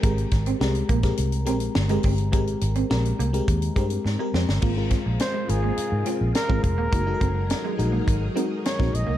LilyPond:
<<
  \new Staff \with { instrumentName = "Flugelhorn" } { \time 4/4 \key aes \major \tempo 4 = 104 r1 | r1 | r4 c''8 aes'4 r8 bes'8 bes'8~ | bes'4. r4. des''8 ees''8 | }
  \new Staff \with { instrumentName = "FM electric piano" } { \time 4/4 \key aes \major <aes c' g' bes'>8. r16 <aes c' g' bes'>8 r16 <aes c' g' bes'>8 r16 <aes c' g' bes'>8 r16 <aes c' g' bes'>8 r16 | <aes c' g' bes'>8. r16 <aes c' g' bes'>8 r16 <aes c' g' bes'>8 r16 <aes c' g' bes'>8 r16 <aes c' g' bes'>8 r16 | <aes c' f' bes'>16 <aes c' f' bes'>4 r16 <aes c' f' bes'>8. r16 <aes c' f' aes'>8 r16 <aes c' f' bes'>8 r16 | <aes ees' ges' bes'>16 <aes ees' ges' a' bes'>4 r16 <aes ees' ges' bes'>8. r16 <aes ees' ges' bes'>8 r16 <aes ees' ges' bes'>8 r16 | }
  \new Staff \with { instrumentName = "String machine" } { \time 4/4 \key aes \major r1 | r1 | <aes c' f'>1 | <ges ees' aes' bes'>1 | }
  \new Staff \with { instrumentName = "Clean electric guitar" } { \time 4/4 \key aes \major aes16 r8 c'16 r8 bes16 r8. c'16 r8 aes16 c'16 r16 | aes16 r8 c'16 r8 bes16 r8. c'16 r8 aes16 c'16 r16 | bes16 r16 c'16 r8 aes16 r16 bes16 r8 c'16 r8 c'16 r16 bes16 | bes16 r16 c'16 r8 aes16 r16 bes16 r8 c'16 r8 c'16 r16 bes16 | }
  \new Staff \with { instrumentName = "Fingered electric bass" } { \clef bass \time 4/4 \key aes \major aes,,8 aes,,8 c,8 bes,,8 c,8 bes,,8 g,,8 g,,8 | aes,,8 aes,,8 bes,,8 c,8 ees,8 g,8 aes,16 r16 f,16 g,,16 | aes,,8. bes,,16 r8 aes,,8 r16 aes,16 r16 bes,,16 r16 aes,,16 f,,16 ees,,16 | ges,,8 ges,,8. r16 bes,,8 aes,,8 r8. bes,,16 bes,,16 c,16 | }
  \new DrumStaff \with { instrumentName = "Drums" } \drummode { \time 4/4 <hh bd>16 hh16 <hh bd sn>16 hh16 sn16 hh16 <hh bd>16 <hh bd sn>16 hh16 hh16 hh16 hh16 sn16 hh16 <hho bd>16 hh16 | <hh bd>16 hh16 hh16 hh16 sn16 hh16 hh16 hh16 <hh bd>16 hh16 <hh bd>16 hh16 sn8 sn16 sn16 | <cymc bd>8 <hh bd sn>8 <hh sn>8 hh8 hh8 hh8 <hh sn>16 bd16 <hh bd>8 | <hh bd>8 <hh bd>8 <hh sn>8 hh8 <hh bd>8 hh8 <hh sn>16 <bd sn>16 hh8 | }
>>